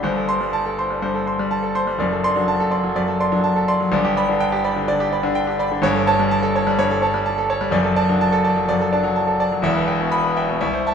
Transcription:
grand piano
0.03 G1 G2 C5
0.16 A4
0.29 C5 C6
0.41 G3
0.53 A5
0.65 A4
0.78 C5 C6
0.90 G3
1.02 G2 C5
1.14 A4
1.27 C5 C6
1.39 G3
1.51 A5
1.63 A4
1.75 C5 C6
1.87 G3
1.99 F#1 F#2 D5
2.12 A4
2.24 D5 C6
2.36 F#3 D4
2.48 A5
2.60 A4
2.71 D5 C6
2.83 F#3
2.96 F#2 D5
3.08 A4
3.20 D5 C6
3.32 F#3 D4
3.44 A5
3.56 A4
3.68 D5 C6
3.80 F#3
3.92 G1 G2 D5
4.05 G4
4.17 D5 B5
4.29 D3 D4
4.40 G5
4.52 G4
4.64 D5 B5
4.76 D3
4.88 D3 D5
5.00 G4
5.12 D5 B5
5.23 D3 D4
5.35 G5
5.47 G4
5.59 D5 B5
5.72 D3
5.82 G1 G2 C#5
5.95 A4
6.07 C#5 A5
6.19 G3
6.31 A5
6.42 A4
6.55 C#5 A5
6.67 G3
6.79 G2 C#5
6.91 A4
7.02 C#5 A5
7.14 G3
7.26 A5
7.38 A4
7.50 C#5 A5
7.61 G3
7.71 F#1 F#2 D5
7.84 A4
7.96 D5 A5
8.09 F#3 D4
8.21 A5
8.32 A4
8.44 D5 A5
8.56 F#3
8.69 F#2 D5
8.81 A4
8.92 D4 D5 A5
9.03 F#3
9.16 A5
9.27 A4
9.40 D5 A5
9.52 F#3
9.62 E1 E2 E5
9.75 B4
9.87 E5 G5
10.00 B2
10.12 B5
10.24 B4
10.37 E5 G5
10.48 B2
10.61 C2 E5
10.73 C5
10.86 E5 A5

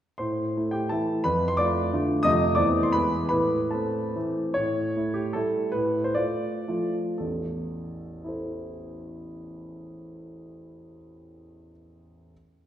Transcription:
grand piano
0.18 A2 C5 C6
0.57 A3 E4
0.71 G4 G5
0.89 E3 A3 E4 A4 A5
1.24 F2 B4 B5
1.48 C6
1.57 A3 F4 D5 D6
1.93 D3 A3 F4
2.23 F2 C3 A3 F4 D#5 D#6
2.55 E2 E3 A3 C4 D5 D6
2.83 C6
2.92 E2 E3 G#3 B3 B4 B5
3.29 A2 B4 B5
3.71 A3 C4 A4 A5
4.15 E3 A3 C4
4.54 A2 C#5
4.97 A3 E4
5.14 G4
5.33 G3 A3 E4 A4
5.72 A2 B4
6.04 C5
6.15 A3 F4 D5
6.68 F3 A3 F4
7.18 A1 E2 A4
8.24 E4 A4 C5

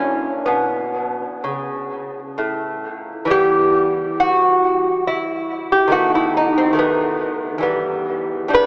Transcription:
lute
Already playing: F#2 A#3 C#4
0.46 B2 B3
1.44 C#3
2.38 A2
3.25 E3 G3
3.30 B3 G4
4.20 F#4
5.07 E4
5.72 G4
5.88 D#3 A3 B3
5.92 F#4
6.15 E4
6.37 D#4
6.58 C4
6.73 D#3 A3
6.79 B3
7.58 E3 G3
7.63 B3
8.48 G2 G3
8.53 B3 B4

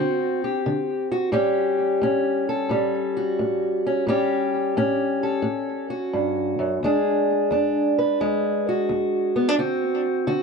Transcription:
steel-string acoustic guitar
Already playing: D3 C4 F#4
0.44 G4
0.66 D3
1.12 F#4
1.32 A2 G3 C#4 G4
2.01 A2 C#4
2.49 A4
2.69 A2 G3
3.17 F#4
3.39 A2
3.86 C#4
4.07 A2 G3 C#4 G4
4.77 A2 C#4
5.23 A4
5.42 A2
5.90 F#4
6.13 G2
6.59 F#2
6.83 E2 G#3 D4 G#4
7.51 E2 D4
7.98 B4
8.20 E2 G#3
8.69 F#4
8.89 E2
9.36 B3
9.49 D4
9.58 D3 C4 F#4
10.27 D3 F#4

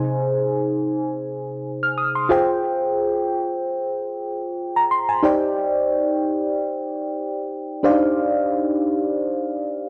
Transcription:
fm electric piano
Already playing: C3 D#4 G#4 C5 G#5
1.83 F6
1.98 D#6
2.15 C6
2.29 F4 G#4 C5 G5
4.76 A#5
4.91 C6
5.09 G#5
5.23 D#4 G4 C5 D5 G5
7.83 D4 G4 C5 D5 F5
7.90 D#4

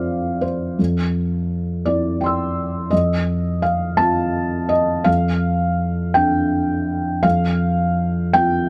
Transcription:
felt piano
Already playing: F2 C4 F4 C5 D5 F5
0.41 C5
0.79 F2
1.86 C4 E4 D5
2.21 G5 C6
2.26 E6
2.91 F2 D#5
3.62 F5
3.97 C4 F4 A5
4.69 D#5
5.04 F2 F5
6.14 C4 D4 G5
7.23 F2 F5
8.33 C4 F4 G5

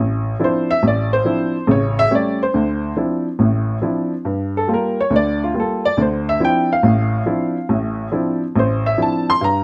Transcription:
upright piano
Already playing: A1
0.40 F3 C4 D4 E4
0.44 C5
0.71 E5
0.83 A1
0.87 D5
1.13 C5
1.25 F3 C4 D4 E4
1.67 A1 C#3 C#5
1.99 E5
2.11 G3 A3 C#4
2.15 D5
2.43 C5
2.54 D2 D3
2.96 F3 C4 D4 E4
3.39 A1 A2
3.82 F3 C4 D4 E4
4.25 G2
4.57 A4
4.68 G3 A#3 F4
4.74 A#4
5.01 C#5
5.10 D2 D3
5.16 D5
5.44 F4
5.54 G3 A#3 F4
5.60 A4
5.85 D5
5.97 D2 D3
6.02 C5
6.29 E5
6.40 F3 C4 D4 E4
6.45 G5
6.73 F5
6.83 A1 A2
7.26 F3 C4 D4 E4
7.69 A1 A2
8.12 F3 C4 D4 E4
8.56 A1 C5
8.86 E5
8.98 F3 C4 D4 E4
9.02 A5
9.30 C6
9.41 G2 A#5

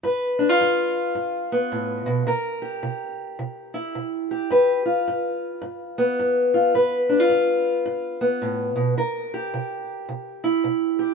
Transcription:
steel-string acoustic guitar
0.03 G2 B4
0.39 D4
0.49 F4
0.61 G2
1.15 G2
1.52 B3
1.72 A2
2.06 B2
2.27 C3 A#4
2.62 G4
2.83 C3
3.39 C3
3.74 E4
3.95 C3
4.31 G4
4.50 G2 B4
4.86 F4
5.08 G2
5.62 G2
5.98 B3
6.19 G2
6.54 F4
6.75 G2 B4
7.09 D4
7.20 F4
7.29 G2
7.86 G2
8.21 B3
8.42 A2
8.76 B2
8.97 C3 A#4
9.34 G4
9.54 C3
10.09 C3
10.44 E4
10.64 C3
10.99 G4

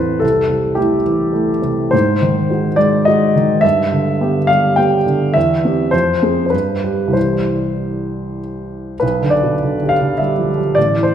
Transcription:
upright piano
Already playing: A1 E2 E3 C4 E4 A4 B4 C5
0.20 C2 A4
0.49 C3
0.75 A3 E4 G4
1.06 E3
1.33 A3 E4
1.62 C3
1.91 G#2 C5
2.22 D#3
2.50 G#3 F#4
2.76 G#3 D5
3.05 G#3 F#4 D#5
3.36 D#3
3.61 G2 E5
3.92 D3
4.21 B3 G4
4.47 G3 F5
4.76 B3 G4 G5
5.06 D3
5.34 E2 E5
5.65 C4 G4
5.91 F2 C5
6.22 C4 G#4
6.46 B4 C5
6.52 G2
6.84 G3 G4
7.07 C2
7.12 E3 G3 G4 C5
9.00 B1 B4
9.22 D3
9.30 D5
9.43 B2
9.63 D3
9.83 G4
9.89 F5
10.02 D3
10.18 G3 E5
10.39 F3
10.58 G3
10.75 A1 D5
10.96 E3
11.03 C5

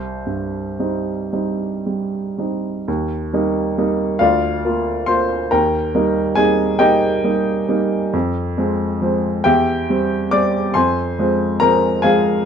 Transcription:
upright piano
Already playing: C2 C5
0.26 G2
0.80 G3 C4 D#4
1.33 G3 C4 D#4
1.86 G3
2.38 G3 C4 D#4
2.88 D#2
3.33 G3 A#3 D#4
3.78 G3 A#3 D#4
4.19 D2 F4 D5 F5
4.65 A#3 F4
5.06 A#3 F4 C5 C6
5.51 D#2 A#4 G5 A#5
5.95 G3 A#3 D#4
6.35 G3 A#3 D#4 G#4 G#5
6.79 G3 A#3 D#4 G4 D#5 G5
7.24 G3 A#3 D#4
7.69 G3 A#3 D#4
8.13 F2
8.58 F3 G#3 C4
9.02 F3 G#3 C4
9.44 E2 G4 E5 G5
9.90 G3 C4
10.31 G3 C4 D5 D6
10.74 F2 C5 G#5 C6
11.19 F3 G#3 C4
11.60 F3 G#3 C4 A#4 A#5
12.02 F3 G#3 C4 G#4 F5 G#5

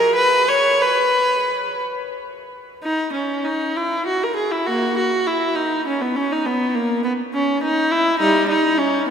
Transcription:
viola
Already playing: A#4
0.16 B4
0.48 C#5
0.81 B4
2.83 D#4
3.13 C#4
3.45 D#4
3.76 E4
4.06 F#4
4.24 A#4
4.36 G#4
4.52 E4
4.66 A#3 F#4
4.97 F#4
5.27 E4
5.55 D#4
5.87 C#4
6.01 B3
6.16 C#4
6.32 D#4
6.46 B3
6.75 A#3
7.04 B3
7.34 C#4
7.63 D#4
7.91 E4
8.19 G3 D#4
8.49 D#4
8.78 C#4

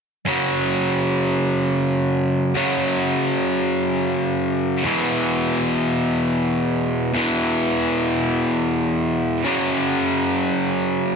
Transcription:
distorted electric guitar
0.25 F#2 C#3 F#3
2.55 F#2 C#3 F#3
4.83 E2 B2 E3
7.14 E2 B2 E3
9.44 F#2 C#3 F#3

